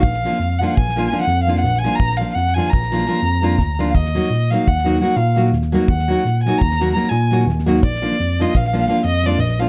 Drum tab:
SD |-oooo-o--oo-ooo--ooooo|-ooooooo-oooooo---o-oo|-oooo-o--oo-ooo-oooooo|-oooo-o--oo-ooo-oooooo|
BD |o-------o-------------|o-------o---------o---|o-------o-------------|o-------o-------------|

SD |-oooo-o--oo-ooo-oooooo|
BD |o-------o-------------|